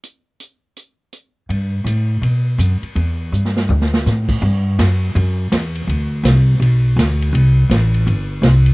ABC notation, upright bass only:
X:1
M:4/4
L:1/8
Q:"Swing" 1/4=164
K:Em
V:1 name="Upright bass" clef=bass
z8 | G,,2 A,,2 B,,2 F,, z | E,,2 G,,2 D,,2 A,,2 | G,,2 F,,2 F,,2 E,,2 |
D,,2 C,,2 B,,,2 D,,2 | C,,2 A,,,2 G,,,2 C,,2 |]